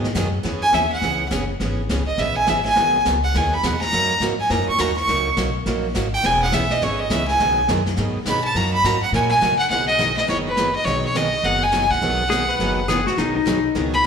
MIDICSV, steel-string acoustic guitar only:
0, 0, Header, 1, 2, 480
1, 0, Start_track
1, 0, Key_signature, 5, "major"
1, 0, Tempo, 289296
1, 738, Time_signature, 4, 2, 24, 8
1, 23337, End_track
2, 0, Start_track
2, 0, Title_t, "Steel-string acoustic guitar"
2, 0, Program_c, 0, 25
2, 246, Note_on_c, 0, 47, 69
2, 255, Note_on_c, 0, 51, 81
2, 258, Note_on_c, 0, 59, 77
2, 266, Note_on_c, 0, 54, 76
2, 269, Note_on_c, 0, 63, 78
2, 274, Note_on_c, 0, 68, 81
2, 437, Note_off_c, 0, 47, 0
2, 442, Note_off_c, 0, 51, 0
2, 443, Note_off_c, 0, 59, 0
2, 447, Note_off_c, 0, 54, 0
2, 448, Note_off_c, 0, 63, 0
2, 451, Note_off_c, 0, 68, 0
2, 718, Note_on_c, 0, 52, 63
2, 722, Note_on_c, 0, 59, 70
2, 730, Note_on_c, 0, 61, 65
2, 745, Note_on_c, 0, 68, 69
2, 1057, Note_off_c, 0, 52, 0
2, 1059, Note_off_c, 0, 59, 0
2, 1063, Note_off_c, 0, 61, 0
2, 1070, Note_off_c, 0, 68, 0
2, 1199, Note_on_c, 0, 52, 69
2, 1204, Note_on_c, 0, 59, 77
2, 1206, Note_on_c, 0, 61, 78
2, 1211, Note_on_c, 0, 68, 79
2, 1393, Note_off_c, 0, 52, 0
2, 1396, Note_off_c, 0, 59, 0
2, 1397, Note_off_c, 0, 61, 0
2, 1399, Note_off_c, 0, 68, 0
2, 1711, Note_on_c, 0, 52, 58
2, 1723, Note_on_c, 0, 59, 58
2, 1731, Note_on_c, 0, 61, 67
2, 1737, Note_on_c, 0, 68, 61
2, 2034, Note_off_c, 0, 52, 0
2, 2040, Note_off_c, 0, 59, 0
2, 2044, Note_off_c, 0, 61, 0
2, 2046, Note_off_c, 0, 68, 0
2, 2169, Note_on_c, 0, 52, 74
2, 2173, Note_on_c, 0, 59, 73
2, 2176, Note_on_c, 0, 61, 80
2, 2192, Note_on_c, 0, 68, 85
2, 2359, Note_off_c, 0, 52, 0
2, 2360, Note_off_c, 0, 59, 0
2, 2362, Note_off_c, 0, 61, 0
2, 2370, Note_off_c, 0, 68, 0
2, 2660, Note_on_c, 0, 52, 61
2, 2666, Note_on_c, 0, 59, 67
2, 2675, Note_on_c, 0, 68, 61
2, 2680, Note_on_c, 0, 61, 63
2, 2989, Note_off_c, 0, 52, 0
2, 2992, Note_off_c, 0, 59, 0
2, 2996, Note_off_c, 0, 68, 0
2, 2999, Note_off_c, 0, 61, 0
2, 3146, Note_on_c, 0, 52, 68
2, 3148, Note_on_c, 0, 59, 70
2, 3153, Note_on_c, 0, 61, 77
2, 3167, Note_on_c, 0, 68, 84
2, 3327, Note_off_c, 0, 52, 0
2, 3329, Note_off_c, 0, 59, 0
2, 3331, Note_off_c, 0, 61, 0
2, 3338, Note_off_c, 0, 68, 0
2, 3619, Note_on_c, 0, 52, 62
2, 3626, Note_on_c, 0, 59, 61
2, 3633, Note_on_c, 0, 61, 63
2, 3639, Note_on_c, 0, 68, 70
2, 3949, Note_off_c, 0, 52, 0
2, 3952, Note_off_c, 0, 59, 0
2, 3956, Note_off_c, 0, 61, 0
2, 3958, Note_off_c, 0, 68, 0
2, 4093, Note_on_c, 0, 52, 80
2, 4105, Note_on_c, 0, 59, 75
2, 4111, Note_on_c, 0, 61, 83
2, 4117, Note_on_c, 0, 68, 92
2, 4281, Note_off_c, 0, 52, 0
2, 4288, Note_off_c, 0, 59, 0
2, 4290, Note_off_c, 0, 61, 0
2, 4293, Note_off_c, 0, 68, 0
2, 4580, Note_on_c, 0, 47, 64
2, 4584, Note_on_c, 0, 54, 60
2, 4593, Note_on_c, 0, 51, 68
2, 4599, Note_on_c, 0, 59, 62
2, 4600, Note_on_c, 0, 63, 66
2, 4608, Note_on_c, 0, 68, 76
2, 4910, Note_off_c, 0, 47, 0
2, 4912, Note_off_c, 0, 54, 0
2, 4916, Note_off_c, 0, 51, 0
2, 4919, Note_off_c, 0, 59, 0
2, 4920, Note_off_c, 0, 63, 0
2, 4924, Note_off_c, 0, 68, 0
2, 5062, Note_on_c, 0, 47, 72
2, 5071, Note_on_c, 0, 51, 75
2, 5073, Note_on_c, 0, 54, 75
2, 5079, Note_on_c, 0, 59, 74
2, 5084, Note_on_c, 0, 63, 75
2, 5086, Note_on_c, 0, 68, 80
2, 5247, Note_off_c, 0, 47, 0
2, 5251, Note_off_c, 0, 51, 0
2, 5252, Note_off_c, 0, 54, 0
2, 5255, Note_off_c, 0, 59, 0
2, 5258, Note_off_c, 0, 63, 0
2, 5259, Note_off_c, 0, 68, 0
2, 5550, Note_on_c, 0, 47, 59
2, 5562, Note_on_c, 0, 51, 57
2, 5565, Note_on_c, 0, 54, 67
2, 5568, Note_on_c, 0, 63, 66
2, 5570, Note_on_c, 0, 59, 62
2, 5577, Note_on_c, 0, 68, 61
2, 5876, Note_off_c, 0, 47, 0
2, 5882, Note_off_c, 0, 51, 0
2, 5883, Note_off_c, 0, 54, 0
2, 5885, Note_off_c, 0, 63, 0
2, 5886, Note_off_c, 0, 59, 0
2, 5889, Note_off_c, 0, 68, 0
2, 6028, Note_on_c, 0, 47, 74
2, 6033, Note_on_c, 0, 51, 77
2, 6044, Note_on_c, 0, 54, 84
2, 6044, Note_on_c, 0, 63, 79
2, 6048, Note_on_c, 0, 59, 80
2, 6053, Note_on_c, 0, 68, 81
2, 6211, Note_off_c, 0, 47, 0
2, 6213, Note_off_c, 0, 51, 0
2, 6219, Note_off_c, 0, 54, 0
2, 6219, Note_off_c, 0, 63, 0
2, 6221, Note_off_c, 0, 59, 0
2, 6223, Note_off_c, 0, 68, 0
2, 6517, Note_on_c, 0, 54, 62
2, 6523, Note_on_c, 0, 58, 67
2, 6525, Note_on_c, 0, 63, 64
2, 6536, Note_on_c, 0, 66, 64
2, 6840, Note_off_c, 0, 54, 0
2, 6843, Note_off_c, 0, 58, 0
2, 6844, Note_off_c, 0, 63, 0
2, 6850, Note_off_c, 0, 66, 0
2, 6997, Note_on_c, 0, 54, 73
2, 7005, Note_on_c, 0, 58, 72
2, 7011, Note_on_c, 0, 63, 82
2, 7015, Note_on_c, 0, 66, 87
2, 7176, Note_off_c, 0, 54, 0
2, 7180, Note_off_c, 0, 58, 0
2, 7183, Note_off_c, 0, 63, 0
2, 7185, Note_off_c, 0, 66, 0
2, 7463, Note_on_c, 0, 54, 53
2, 7473, Note_on_c, 0, 58, 58
2, 7478, Note_on_c, 0, 63, 60
2, 7487, Note_on_c, 0, 66, 64
2, 7794, Note_off_c, 0, 54, 0
2, 7799, Note_off_c, 0, 58, 0
2, 7802, Note_off_c, 0, 63, 0
2, 7806, Note_off_c, 0, 66, 0
2, 7936, Note_on_c, 0, 54, 74
2, 7941, Note_on_c, 0, 58, 76
2, 7959, Note_on_c, 0, 63, 80
2, 7963, Note_on_c, 0, 66, 82
2, 8127, Note_off_c, 0, 54, 0
2, 8129, Note_off_c, 0, 58, 0
2, 8138, Note_off_c, 0, 63, 0
2, 8140, Note_off_c, 0, 66, 0
2, 8440, Note_on_c, 0, 54, 60
2, 8440, Note_on_c, 0, 58, 61
2, 8443, Note_on_c, 0, 63, 67
2, 8454, Note_on_c, 0, 66, 69
2, 8763, Note_off_c, 0, 54, 0
2, 8764, Note_off_c, 0, 58, 0
2, 8765, Note_off_c, 0, 63, 0
2, 8771, Note_off_c, 0, 66, 0
2, 8910, Note_on_c, 0, 54, 72
2, 8913, Note_on_c, 0, 58, 74
2, 8924, Note_on_c, 0, 63, 79
2, 8925, Note_on_c, 0, 66, 81
2, 9095, Note_off_c, 0, 54, 0
2, 9096, Note_off_c, 0, 58, 0
2, 9101, Note_off_c, 0, 63, 0
2, 9102, Note_off_c, 0, 66, 0
2, 9389, Note_on_c, 0, 54, 61
2, 9400, Note_on_c, 0, 58, 61
2, 9400, Note_on_c, 0, 63, 67
2, 9412, Note_on_c, 0, 66, 66
2, 9719, Note_off_c, 0, 54, 0
2, 9724, Note_off_c, 0, 58, 0
2, 9725, Note_off_c, 0, 63, 0
2, 9731, Note_off_c, 0, 66, 0
2, 9870, Note_on_c, 0, 54, 73
2, 9884, Note_on_c, 0, 58, 73
2, 9887, Note_on_c, 0, 63, 76
2, 9888, Note_on_c, 0, 66, 79
2, 10055, Note_off_c, 0, 54, 0
2, 10062, Note_off_c, 0, 58, 0
2, 10064, Note_off_c, 0, 63, 0
2, 10064, Note_off_c, 0, 66, 0
2, 10348, Note_on_c, 0, 52, 62
2, 10359, Note_on_c, 0, 59, 68
2, 10361, Note_on_c, 0, 61, 67
2, 10368, Note_on_c, 0, 68, 68
2, 10679, Note_off_c, 0, 52, 0
2, 10684, Note_off_c, 0, 59, 0
2, 10685, Note_off_c, 0, 61, 0
2, 10689, Note_off_c, 0, 68, 0
2, 10818, Note_on_c, 0, 52, 71
2, 10827, Note_on_c, 0, 59, 80
2, 10839, Note_on_c, 0, 61, 75
2, 10844, Note_on_c, 0, 68, 89
2, 11010, Note_off_c, 0, 52, 0
2, 11014, Note_off_c, 0, 59, 0
2, 11020, Note_off_c, 0, 61, 0
2, 11023, Note_off_c, 0, 68, 0
2, 11308, Note_on_c, 0, 52, 56
2, 11321, Note_on_c, 0, 59, 64
2, 11325, Note_on_c, 0, 61, 63
2, 11331, Note_on_c, 0, 68, 71
2, 11639, Note_off_c, 0, 52, 0
2, 11646, Note_off_c, 0, 59, 0
2, 11648, Note_off_c, 0, 61, 0
2, 11651, Note_off_c, 0, 68, 0
2, 11782, Note_on_c, 0, 52, 73
2, 11791, Note_on_c, 0, 59, 74
2, 11793, Note_on_c, 0, 61, 78
2, 11798, Note_on_c, 0, 68, 83
2, 11972, Note_off_c, 0, 52, 0
2, 11976, Note_off_c, 0, 59, 0
2, 11978, Note_off_c, 0, 61, 0
2, 11980, Note_off_c, 0, 68, 0
2, 12273, Note_on_c, 0, 47, 60
2, 12277, Note_on_c, 0, 54, 65
2, 12282, Note_on_c, 0, 59, 66
2, 12286, Note_on_c, 0, 51, 67
2, 12288, Note_on_c, 0, 63, 75
2, 12294, Note_on_c, 0, 68, 72
2, 12602, Note_off_c, 0, 47, 0
2, 12604, Note_off_c, 0, 54, 0
2, 12606, Note_off_c, 0, 59, 0
2, 12608, Note_off_c, 0, 51, 0
2, 12609, Note_off_c, 0, 63, 0
2, 12612, Note_off_c, 0, 68, 0
2, 12757, Note_on_c, 0, 51, 77
2, 12759, Note_on_c, 0, 47, 76
2, 12762, Note_on_c, 0, 54, 76
2, 12765, Note_on_c, 0, 63, 74
2, 12771, Note_on_c, 0, 59, 79
2, 12778, Note_on_c, 0, 68, 81
2, 12939, Note_off_c, 0, 51, 0
2, 12940, Note_off_c, 0, 47, 0
2, 12942, Note_off_c, 0, 54, 0
2, 12943, Note_off_c, 0, 63, 0
2, 12946, Note_off_c, 0, 59, 0
2, 12950, Note_off_c, 0, 68, 0
2, 13230, Note_on_c, 0, 47, 66
2, 13232, Note_on_c, 0, 54, 60
2, 13233, Note_on_c, 0, 51, 61
2, 13246, Note_on_c, 0, 59, 63
2, 13249, Note_on_c, 0, 63, 64
2, 13249, Note_on_c, 0, 68, 72
2, 13560, Note_off_c, 0, 47, 0
2, 13561, Note_off_c, 0, 51, 0
2, 13561, Note_off_c, 0, 54, 0
2, 13568, Note_off_c, 0, 59, 0
2, 13569, Note_off_c, 0, 63, 0
2, 13569, Note_off_c, 0, 68, 0
2, 13717, Note_on_c, 0, 47, 76
2, 13728, Note_on_c, 0, 51, 76
2, 13731, Note_on_c, 0, 54, 86
2, 13738, Note_on_c, 0, 63, 80
2, 13739, Note_on_c, 0, 59, 78
2, 13745, Note_on_c, 0, 68, 85
2, 13899, Note_off_c, 0, 47, 0
2, 13905, Note_off_c, 0, 51, 0
2, 13906, Note_off_c, 0, 54, 0
2, 13910, Note_off_c, 0, 59, 0
2, 13910, Note_off_c, 0, 63, 0
2, 13913, Note_off_c, 0, 68, 0
2, 14202, Note_on_c, 0, 54, 64
2, 14210, Note_on_c, 0, 58, 64
2, 14220, Note_on_c, 0, 63, 71
2, 14222, Note_on_c, 0, 66, 74
2, 14525, Note_off_c, 0, 54, 0
2, 14529, Note_off_c, 0, 58, 0
2, 14534, Note_off_c, 0, 63, 0
2, 14535, Note_off_c, 0, 66, 0
2, 14673, Note_on_c, 0, 54, 77
2, 14685, Note_on_c, 0, 58, 74
2, 14689, Note_on_c, 0, 63, 84
2, 14694, Note_on_c, 0, 66, 92
2, 14857, Note_off_c, 0, 54, 0
2, 14863, Note_off_c, 0, 58, 0
2, 14864, Note_off_c, 0, 63, 0
2, 14867, Note_off_c, 0, 66, 0
2, 15168, Note_on_c, 0, 54, 59
2, 15168, Note_on_c, 0, 58, 68
2, 15168, Note_on_c, 0, 63, 64
2, 15188, Note_on_c, 0, 66, 67
2, 15488, Note_off_c, 0, 54, 0
2, 15488, Note_off_c, 0, 58, 0
2, 15488, Note_off_c, 0, 63, 0
2, 15498, Note_off_c, 0, 66, 0
2, 15614, Note_on_c, 0, 54, 71
2, 15624, Note_on_c, 0, 58, 84
2, 15627, Note_on_c, 0, 63, 89
2, 15640, Note_on_c, 0, 66, 78
2, 15807, Note_off_c, 0, 54, 0
2, 15812, Note_off_c, 0, 58, 0
2, 15813, Note_off_c, 0, 63, 0
2, 15819, Note_off_c, 0, 66, 0
2, 16100, Note_on_c, 0, 47, 58
2, 16103, Note_on_c, 0, 51, 56
2, 16104, Note_on_c, 0, 54, 59
2, 16112, Note_on_c, 0, 59, 60
2, 16115, Note_on_c, 0, 63, 61
2, 16121, Note_on_c, 0, 68, 65
2, 16433, Note_off_c, 0, 47, 0
2, 16435, Note_off_c, 0, 51, 0
2, 16435, Note_off_c, 0, 54, 0
2, 16439, Note_off_c, 0, 59, 0
2, 16441, Note_off_c, 0, 63, 0
2, 16444, Note_off_c, 0, 68, 0
2, 16564, Note_on_c, 0, 47, 75
2, 16566, Note_on_c, 0, 51, 73
2, 16571, Note_on_c, 0, 59, 72
2, 16572, Note_on_c, 0, 54, 75
2, 16580, Note_on_c, 0, 63, 79
2, 16581, Note_on_c, 0, 68, 74
2, 16761, Note_off_c, 0, 47, 0
2, 16762, Note_off_c, 0, 51, 0
2, 16765, Note_off_c, 0, 54, 0
2, 16765, Note_off_c, 0, 59, 0
2, 16769, Note_off_c, 0, 63, 0
2, 16769, Note_off_c, 0, 68, 0
2, 17035, Note_on_c, 0, 47, 52
2, 17052, Note_on_c, 0, 51, 54
2, 17053, Note_on_c, 0, 54, 59
2, 17058, Note_on_c, 0, 59, 61
2, 17061, Note_on_c, 0, 63, 61
2, 17066, Note_on_c, 0, 68, 60
2, 17380, Note_off_c, 0, 47, 0
2, 17389, Note_off_c, 0, 51, 0
2, 17389, Note_off_c, 0, 54, 0
2, 17392, Note_off_c, 0, 59, 0
2, 17393, Note_off_c, 0, 63, 0
2, 17396, Note_off_c, 0, 68, 0
2, 17539, Note_on_c, 0, 47, 74
2, 17545, Note_on_c, 0, 51, 71
2, 17553, Note_on_c, 0, 59, 77
2, 17554, Note_on_c, 0, 54, 81
2, 17554, Note_on_c, 0, 68, 79
2, 17559, Note_on_c, 0, 63, 80
2, 17728, Note_off_c, 0, 47, 0
2, 17731, Note_off_c, 0, 51, 0
2, 17735, Note_off_c, 0, 54, 0
2, 17735, Note_off_c, 0, 59, 0
2, 17735, Note_off_c, 0, 68, 0
2, 17738, Note_off_c, 0, 63, 0
2, 18020, Note_on_c, 0, 51, 65
2, 18028, Note_on_c, 0, 47, 57
2, 18034, Note_on_c, 0, 54, 58
2, 18036, Note_on_c, 0, 59, 60
2, 18043, Note_on_c, 0, 68, 64
2, 18046, Note_on_c, 0, 63, 64
2, 18352, Note_off_c, 0, 51, 0
2, 18356, Note_off_c, 0, 47, 0
2, 18359, Note_off_c, 0, 54, 0
2, 18360, Note_off_c, 0, 59, 0
2, 18364, Note_off_c, 0, 68, 0
2, 18365, Note_off_c, 0, 63, 0
2, 18504, Note_on_c, 0, 47, 71
2, 18509, Note_on_c, 0, 54, 69
2, 18510, Note_on_c, 0, 59, 82
2, 18512, Note_on_c, 0, 63, 71
2, 18513, Note_on_c, 0, 51, 71
2, 18516, Note_on_c, 0, 68, 80
2, 18690, Note_off_c, 0, 47, 0
2, 18692, Note_off_c, 0, 54, 0
2, 18693, Note_off_c, 0, 59, 0
2, 18694, Note_off_c, 0, 51, 0
2, 18694, Note_off_c, 0, 63, 0
2, 18696, Note_off_c, 0, 68, 0
2, 18982, Note_on_c, 0, 47, 56
2, 18982, Note_on_c, 0, 54, 59
2, 18984, Note_on_c, 0, 51, 66
2, 18986, Note_on_c, 0, 59, 62
2, 18992, Note_on_c, 0, 68, 68
2, 18997, Note_on_c, 0, 63, 63
2, 19312, Note_off_c, 0, 47, 0
2, 19312, Note_off_c, 0, 54, 0
2, 19313, Note_off_c, 0, 51, 0
2, 19314, Note_off_c, 0, 59, 0
2, 19317, Note_off_c, 0, 68, 0
2, 19320, Note_off_c, 0, 63, 0
2, 19442, Note_on_c, 0, 47, 68
2, 19451, Note_on_c, 0, 51, 80
2, 19452, Note_on_c, 0, 54, 76
2, 19458, Note_on_c, 0, 59, 83
2, 19458, Note_on_c, 0, 63, 85
2, 19462, Note_on_c, 0, 68, 77
2, 19638, Note_off_c, 0, 47, 0
2, 19642, Note_off_c, 0, 51, 0
2, 19643, Note_off_c, 0, 54, 0
2, 19646, Note_off_c, 0, 59, 0
2, 19646, Note_off_c, 0, 63, 0
2, 19648, Note_off_c, 0, 68, 0
2, 19932, Note_on_c, 0, 47, 59
2, 19942, Note_on_c, 0, 51, 61
2, 19947, Note_on_c, 0, 63, 66
2, 19948, Note_on_c, 0, 54, 71
2, 19954, Note_on_c, 0, 59, 69
2, 19955, Note_on_c, 0, 68, 70
2, 20266, Note_off_c, 0, 47, 0
2, 20271, Note_off_c, 0, 51, 0
2, 20274, Note_off_c, 0, 63, 0
2, 20275, Note_off_c, 0, 54, 0
2, 20278, Note_off_c, 0, 59, 0
2, 20278, Note_off_c, 0, 68, 0
2, 20426, Note_on_c, 0, 47, 81
2, 20435, Note_on_c, 0, 51, 77
2, 20439, Note_on_c, 0, 54, 77
2, 20439, Note_on_c, 0, 59, 76
2, 20445, Note_on_c, 0, 63, 85
2, 20449, Note_on_c, 0, 68, 80
2, 20609, Note_off_c, 0, 47, 0
2, 20614, Note_off_c, 0, 51, 0
2, 20615, Note_off_c, 0, 54, 0
2, 20615, Note_off_c, 0, 59, 0
2, 20619, Note_off_c, 0, 63, 0
2, 20620, Note_off_c, 0, 68, 0
2, 20904, Note_on_c, 0, 47, 58
2, 20908, Note_on_c, 0, 51, 67
2, 20910, Note_on_c, 0, 54, 60
2, 20912, Note_on_c, 0, 59, 63
2, 20922, Note_on_c, 0, 63, 63
2, 20926, Note_on_c, 0, 68, 71
2, 21231, Note_off_c, 0, 47, 0
2, 21233, Note_off_c, 0, 51, 0
2, 21234, Note_off_c, 0, 54, 0
2, 21235, Note_off_c, 0, 59, 0
2, 21240, Note_off_c, 0, 63, 0
2, 21242, Note_off_c, 0, 68, 0
2, 21373, Note_on_c, 0, 47, 71
2, 21373, Note_on_c, 0, 51, 84
2, 21386, Note_on_c, 0, 54, 79
2, 21386, Note_on_c, 0, 59, 84
2, 21389, Note_on_c, 0, 63, 70
2, 21398, Note_on_c, 0, 68, 88
2, 21561, Note_off_c, 0, 47, 0
2, 21561, Note_off_c, 0, 51, 0
2, 21568, Note_off_c, 0, 54, 0
2, 21568, Note_off_c, 0, 59, 0
2, 21569, Note_off_c, 0, 63, 0
2, 21574, Note_off_c, 0, 68, 0
2, 21869, Note_on_c, 0, 47, 59
2, 21870, Note_on_c, 0, 51, 60
2, 21871, Note_on_c, 0, 54, 60
2, 21878, Note_on_c, 0, 59, 63
2, 21880, Note_on_c, 0, 68, 67
2, 21888, Note_on_c, 0, 63, 62
2, 22193, Note_off_c, 0, 47, 0
2, 22193, Note_off_c, 0, 51, 0
2, 22194, Note_off_c, 0, 54, 0
2, 22197, Note_off_c, 0, 59, 0
2, 22198, Note_off_c, 0, 68, 0
2, 22202, Note_off_c, 0, 63, 0
2, 22323, Note_on_c, 0, 47, 70
2, 22329, Note_on_c, 0, 51, 75
2, 22342, Note_on_c, 0, 54, 73
2, 22343, Note_on_c, 0, 59, 76
2, 22347, Note_on_c, 0, 63, 79
2, 22356, Note_on_c, 0, 68, 83
2, 22515, Note_off_c, 0, 47, 0
2, 22518, Note_off_c, 0, 51, 0
2, 22524, Note_off_c, 0, 54, 0
2, 22525, Note_off_c, 0, 59, 0
2, 22527, Note_off_c, 0, 63, 0
2, 22532, Note_off_c, 0, 68, 0
2, 22814, Note_on_c, 0, 47, 54
2, 22814, Note_on_c, 0, 51, 54
2, 22822, Note_on_c, 0, 54, 56
2, 22825, Note_on_c, 0, 68, 63
2, 22826, Note_on_c, 0, 59, 60
2, 22828, Note_on_c, 0, 63, 65
2, 23143, Note_off_c, 0, 47, 0
2, 23143, Note_off_c, 0, 51, 0
2, 23148, Note_off_c, 0, 54, 0
2, 23149, Note_off_c, 0, 68, 0
2, 23150, Note_off_c, 0, 59, 0
2, 23151, Note_off_c, 0, 63, 0
2, 23337, End_track
0, 0, End_of_file